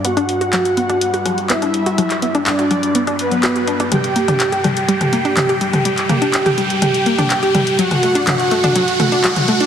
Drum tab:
HH |xxoxxxoxxxooxxox|xxoxxxoxxxoxxxox|xxoxxxoxxxooxxox|xxoxxxoxxxoxxxox|
CP |----x-------x---|-x--x-------x---|----x-------x---|-x--x-------x---|
SD |-r--r--r--r--r--|r--r--r--r--r--r|r--r--r--r--r--r|--r--r--r--r--r-|
T2 |----------------|----------------|o--o--o--o--o--o|--o--o--o--o--o-|

HH |xxoxxxoxxxooxxox|
CP |----x-------x---|
SD |-r--r--r--r--r--|
T2 |-o--o--o--o--o--|